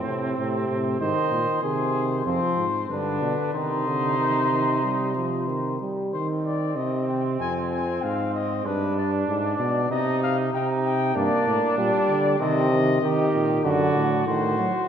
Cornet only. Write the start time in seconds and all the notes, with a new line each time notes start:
1.01 D#5
1.63 C5
2.26 C5
2.89 B4
3.54 C5
6.13 C5
6.45 D5
6.77 D#5
7.08 G5
7.40 G#5
7.71 G#5
8.02 F5
8.34 D#5
8.65 B4
8.97 D5
9.28 D5
9.91 D#5
10.23 F5
10.53 G5
10.85 G5
11.17 D5
11.78 D5
12.40 D#5
13.64 D5
14.27 C5